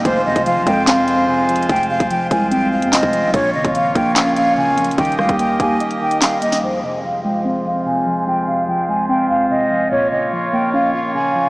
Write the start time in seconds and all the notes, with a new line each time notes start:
0.05 F1 F2 G#3 F4 C5, kick, closed hi-hat
0.25 F2 C3 D#5
0.36 F1, kick, closed hi-hat
0.46 F3 F5, closed hi-hat
0.56 C2
0.67 F2 G#3 G5, kick, closed hi-hat
0.87 C4 F5, snare, clap, closed hi-hat
1.08 F2 F5, closed hi-hat
1.28 C3 G#5
1.49 F3, closed hi-hat
1.56 closed hi-hat
1.63 closed hi-hat
1.69 F1 F2 G5, kick, closed hi-hat
1.76 closed hi-hat
1.83 closed hi-hat
1.90 C3 F5
2.00 F1, kick, closed hi-hat
2.10 F3 G5, closed hi-hat
2.31 C2 G#3 G#5, kick, closed hi-hat
2.51 C4 G5, closed hi-hat
2.72 F2 F5
2.82 F2, closed hi-hat
2.93 C2 C3 D#5, snare, clap
3.03 F1, kick
3.13 F3, closed hi-hat
3.24 C2
3.34 A#1 A#2 A#3 C#5, kick, closed hi-hat
3.54 G#1 C#3 D#5
3.65 G#1, kick, closed hi-hat
3.75 F3 F5, closed hi-hat
3.95 A#1 A#3 G5, kick, closed hi-hat
4.16 C#4 F5, snare, clap, closed hi-hat
4.36 A#2 F5, closed hi-hat
4.57 C#3 G#5
4.67 F2
4.78 F3, closed hi-hat
4.83 A#1, closed hi-hat
4.91 closed hi-hat
4.98 D#1 D#3 G4 D#5 G5, kick, closed hi-hat
5.05 closed hi-hat
5.12 closed hi-hat
5.19 D#2 G3 F5, cross-stick
5.29 D#2, kick, closed hi-hat
5.39 A#3 G5, closed hi-hat
5.60 D#2 D#4 G#5, kick, closed hi-hat
5.80 D#5, closed hi-hat
5.91 closed hi-hat
6.01 D#3 G5
6.11 closed hi-hat
6.22 G3 F5, snare, clap
6.42 A#3 D#5, closed hi-hat
6.52 snare
6.63 F2 G#3 F4 C5
6.83 C3 D#5
7.04 F3 F5
7.24 G#3 G5
7.45 C4 F5
7.65 F2 F5
7.86 C3 G#5
8.06 F3
8.27 F2 G5
8.47 C3 F5
8.68 F3 G5
8.89 G#3 G#5
9.09 C4 G5
9.30 F2 F5
9.50 C3 D#5
9.71 F3
9.91 A#2 A#3 C#5
10.12 C#3 D#5
10.32 F3 F5
10.53 A#3 G5
10.73 C#4 F5
10.94 A#2 F5
11.14 C#3 G#5
11.35 F3